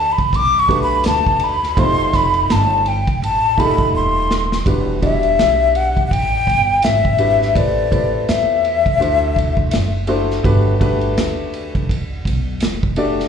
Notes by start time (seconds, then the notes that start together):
Already playing: D2 A5
0.12 B5
0.18 kick, ride
0.33 B1 D6, kick, ride
0.59 C#6
0.68 A3 D4 F#4 G4 B4, kick, ride
0.83 B5
1.04 D2 A5, snare, hi-hat pedal, ride
1.27 kick
1.39 ride
1.44 B5
1.63 snare, ride
1.77 F1 A3 D#4 F4 G4 C5 C6, kick, ride
2.14 B5, kick, snare, ride
2.34 ride
2.50 G1 A5, snare, hi-hat pedal, ride
2.86 G5, ride
3.07 muted upright bass stroke, kick, ride
3.22 A1 A5, ride
3.57 A3 D#4 F4 G4 G#4 B5, kick, ride
3.65 A4
3.78 kick
3.94 D#1 C6
4.31 snare
4.52 snare
4.66 E1 G3 D4 E4 F#4 B4, kick, ride
5.01 G3 D4 E4 F#4 D5 E5, kick, ride
5.23 ride
5.39 B1, snare, hi-hat pedal, ride
5.75 F#5, ride
5.97 kick, ride
6.07 F#5
6.11 A1 G5, kick, ride
6.47 G1, kick, ride
6.82 G#1 E5, snare, hi-hat pedal, ride
7.05 kick
7.18 G3 D4 E4 F#4 B4, ride
7.42 snare
7.55 A1 A3 C4 E4 G4 B4 D5, kick, ride
7.91 A3 C4 E4 G4 B4, kick, ride
8.29 E2 E5, snare, hi-hat pedal, ride
8.65 ride
8.86 kick, ride
8.99 D2 A3 D4 E4 F#4 C5, ride
9.36 kick, ride
9.57 kick
9.71 F#1, snare, hi-hat pedal, ride
10.07 A3 D4 E4 F#4 C5, ride
10.31 snare
10.43 G1 A3 D4 F#4 G4 B4, kick, ride
10.80 A3 D4 F#4 G4 B4, kick, ride
11.01 ride
11.17 D2, snare, hi-hat pedal, ride
11.54 ride
11.75 kick, ride
11.89 C#2, kick, ride
12.25 B1, kick, ride
12.60 E1, snare, hi-hat pedal, ride
12.83 kick
12.96 A3 D4 F#4 G4 D5, ride
13.20 snare, ride